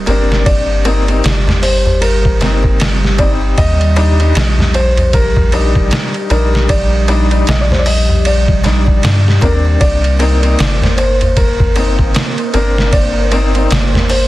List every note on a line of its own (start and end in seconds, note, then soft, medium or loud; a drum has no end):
0.00 9.83 G3 medium
0.00 9.83 G4 medium
0.00 sub drop medium
0.06 1.21 G1 medium
0.06 0.81 A#3 medium
0.06 0.82 C4 medium
0.06 0.83 D4 medium
0.06 0.43 A#4 medium
0.06 ride medium
0.06 darbuka tek medium
0.30 snare soft
0.30 darbuka tek medium
0.46 1.59 D5 loud
0.46 kick loud
0.46 ride medium
0.46 darbuka tek soft
0.85 1.02 A#3 medium
0.85 1.03 C4 medium
0.85 1.04 D#4 loud
0.85 ride medium
0.85 darbuka tek loud
1.08 1.20 A#3 medium
1.08 1.21 C4 medium
1.08 1.22 D#4 loud
1.08 ride soft
1.08 darbuka tek medium
1.24 2.38 G1 medium
1.24 snare loud
1.24 ride medium
1.24 darbuka tek soft
1.47 snare soft
1.47 darbuka dum medium
1.62 2.03 C5 medium
1.62 open hi-hat medium
1.62 darbuka tek loud
1.85 darbuka tek medium
1.85 darbuka dum medium
2.01 2.75 A#4 medium
2.01 ride medium
2.01 darbuka tek soft
2.25 kick medium
2.41 3.55 G1 loud
2.41 3.15 A#3 medium
2.41 3.16 C4 medium
2.41 3.17 D#4 medium
2.41 snare soft
2.41 ride medium
2.41 darbuka tek loud
2.63 kick loud
2.63 darbuka tek medium
2.79 snare loud
2.79 ride medium
2.79 darbuka tek soft
3.05 snare soft
3.18 3.93 G3 medium
3.18 3.94 C4 medium
3.18 3.94 D#4 medium
3.18 3.28 D5 loud
3.18 kick loud
3.18 ride medium
3.18 darbuka tek loud
3.41 darbuka tek medium
3.58 4.33 D#2 loud
3.58 4.78 D#5 loud
3.58 kick loud
3.58 ride medium
3.58 darbuka tek soft
3.81 ride soft
3.96 4.14 G3 loud
3.96 4.15 D4 loud
3.96 4.15 D#4 loud
3.96 ride medium
3.96 darbuka tek loud
4.19 4.32 G3 loud
4.19 4.33 D4 medium
4.19 4.33 D#4 loud
4.19 ride soft
4.19 darbuka tek medium
4.35 5.88 A#1 medium
4.35 snare loud
4.35 ride medium
4.35 darbuka tek soft
4.58 snare soft
4.58 darbuka dum medium
4.74 5.15 C5 loud
4.74 ride medium
4.74 darbuka tek loud
4.97 ride soft
4.97 darbuka tek medium
4.97 darbuka dum medium
5.13 6.26 A#4 medium
5.13 kick loud
5.13 ride medium
5.13 darbuka tek soft
5.36 kick medium
5.36 darbuka dum medium
5.52 6.27 G3 medium
5.52 6.27 D4 medium
5.52 6.28 D#4 medium
5.52 ride medium
5.52 darbuka tek loud
5.75 kick loud
5.75 darbuka tek medium
5.91 snare loud
5.91 ride medium
5.91 darbuka tek soft
6.14 ride soft
6.30 7.44 A#1 medium
6.30 7.04 G3 medium
6.30 7.05 D4 medium
6.30 7.06 D#4 medium
6.30 6.71 A#4 medium
6.30 ride medium
6.30 darbuka tek loud
6.54 snare soft
6.54 darbuka tek medium
6.69 7.46 D5 loud
6.69 kick loud
6.69 ride medium
6.69 darbuka tek soft
7.08 7.26 G3 medium
7.08 7.27 D4 medium
7.08 7.27 D#4 loud
7.08 ride medium
7.08 darbuka tek loud
7.31 7.43 G3 medium
7.31 7.44 D4 medium
7.31 7.45 D#4 loud
7.31 ride soft
7.31 darbuka tek medium
7.47 8.61 A#1 medium
7.47 7.61 D#5 medium
7.47 snare loud
7.47 ride medium
7.61 7.71 D5 medium
7.70 7.79 C5 medium
7.70 snare soft
7.70 darbuka dum medium
7.79 7.86 D5 medium
7.86 8.23 D#5 loud
7.86 open hi-hat medium
7.86 darbuka tek loud
8.09 darbuka tek medium
8.09 darbuka dum medium
8.25 9.00 D5 medium
8.25 ride medium
8.25 darbuka tek soft
8.48 kick medium
8.64 9.00 A#1 loud
8.64 9.38 G3 medium
8.64 9.39 D4 medium
8.64 9.40 D#4 medium
8.64 snare soft
8.64 ride medium
8.64 darbuka tek medium
8.87 kick loud
8.87 darbuka tek soft
9.03 9.38 G2 loud
9.03 snare loud
9.03 ride medium
9.03 darbuka tek soft
9.28 snare soft
9.41 9.77 D#2 medium
9.41 10.16 A#3 medium
9.41 10.17 C4 medium
9.41 10.17 D4 medium
9.41 9.51 A#4 medium
9.41 kick medium
9.41 ride medium
9.41 darbuka tek medium
9.65 darbuka tek soft
9.81 10.56 C2 loud
9.81 14.28 A#3 medium
9.81 14.28 A#4 medium
9.81 14.28 C5 medium
9.81 10.94 D5 loud
9.81 kick loud
9.81 ride medium
9.81 darbuka tek soft
10.04 ride soft
10.19 10.37 A#3 loud
10.19 10.38 C4 medium
10.19 10.39 D#4 loud
10.19 ride medium
10.19 darbuka tek medium
10.42 10.55 A#3 loud
10.42 10.55 C4 medium
10.42 10.56 D#4 loud
10.42 ride soft
10.42 darbuka tek soft
10.58 12.12 G1 medium
10.58 snare loud
10.58 ride medium
10.58 darbuka tek soft
10.82 snare soft
10.82 darbuka dum medium
10.97 11.38 C5 medium
10.97 ride medium
10.97 darbuka tek loud
11.21 ride soft
11.21 darbuka tek soft
11.21 darbuka dum medium
11.37 12.11 A#4 medium
11.37 kick loud
11.37 ride medium
11.37 darbuka tek soft
11.60 kick loud
11.60 darbuka dum medium
11.76 12.50 A#3 medium
11.76 12.51 C4 medium
11.76 12.51 D#4 medium
11.76 ride medium
11.76 darbuka tek loud
11.99 kick medium
11.99 darbuka tek soft
12.14 snare loud
12.14 ride medium
12.14 darbuka tek soft
12.38 ride soft
12.53 13.68 G1 medium
12.53 13.28 A#3 medium
12.53 13.28 C4 medium
12.53 13.29 D4 medium
12.53 12.90 A#4 medium
12.53 ride medium
12.53 darbuka tek medium
12.77 snare soft
12.77 darbuka tek soft
12.93 14.13 D5 loud
12.93 kick loud
12.93 ride medium
12.93 darbuka tek soft
13.32 13.49 A#3 loud
13.32 13.50 C4 medium
13.32 13.51 D#4 loud
13.32 ride medium
13.32 darbuka tek medium
13.54 13.67 A#3 medium
13.54 13.67 C4 medium
13.54 13.68 D#4 loud
13.54 ride soft
13.54 darbuka tek soft
13.70 14.28 G1 medium
13.70 snare loud
13.70 ride medium
13.70 darbuka tek soft
13.94 snare soft
13.94 darbuka dum medium
14.09 14.28 C5 loud
14.09 open hi-hat medium
14.09 darbuka tek medium